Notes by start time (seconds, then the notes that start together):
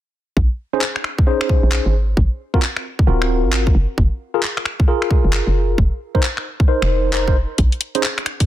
0.37 A#1, kick
0.73 C#4 D#4 G#4 C5
0.81 clap
0.96 finger snap
1.04 finger snap
1.18 kick
1.27 C#4 D#4 G#4 C5
1.41 finger snap
1.49 kick
1.63 A#1
1.72 clap
1.86 G#1
2.17 G#1, kick
2.54 C4 F4 F#4 A#4, kick
2.62 clap
2.77 finger snap
2.99 kick
3.07 D#1 C4 F4 F#4 A#4
3.22 finger snap
3.44 G#1
3.53 clap
3.67 kick
3.75 F#1
3.98 F#1, kick
4.34 F4 G#4 A#4
4.43 clap
4.57 finger snap
4.65 finger snap
4.80 kick
4.88 F4 G#4 A#4
5.02 finger snap
5.11 kick
5.24 F#1
5.33 clap
5.47 F#1
5.78 F1, kick
6.15 D#4 A#4 C5, kick
6.23 clap
6.37 finger snap
6.60 kick
6.68 D#4 A#4 C5
6.82 F1, finger snap
7.13 D#4 A#4 C5, clap
7.27 D#4 A#4 C5, kick
7.58 A#1, kick, closed hi-hat
7.72 closed hi-hat
7.81 closed hi-hat
7.95 C#4 D#4 G#4 C5, closed hi-hat
8.03 clap
8.18 finger snap, closed hi-hat
8.26 finger snap, closed hi-hat
8.40 kick, closed hi-hat